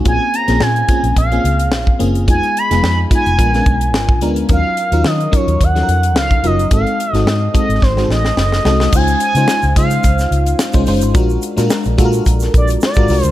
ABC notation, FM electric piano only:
X:1
M:4/4
L:1/16
Q:"Swing 16ths" 1/4=108
K:Db
V:1 name="FM electric piano"
[B,CDFA]2 z [B,CDFA]2 z [B,CDFA]2 z [B,CDFA]4 z [B,CDFA]2 | [A,_CEFA]2 z [A,CEFA]2 z [A,CEFA]2 [A,C=DFB] [A,C_D=DFB]4 z [A,CDFB]2 | [G,DEFB]2 z [G,DEFB]2 z [G,DEFB]2 z [F,G,DE=AB]4 z [G,DEFB]2 | [A,CEG=A]2 z [_A,CEG=A]2 z [_A,CEG=A]2 z [_A,CEG_A=A]4 z [_A,CEG=A]2 |
[A,DEFc]2 z [A,DEFc]2 z [A,DEFc]4- [A,DEFc] z2 [A,DEFc] [A,DEFc]2 | [A,=DFGB]2 z [A,DFGB]2 z [A,DFG=AB]4- [_A,DFG=AB] z2 [_A,DFGB] [A,DFGB]2 |]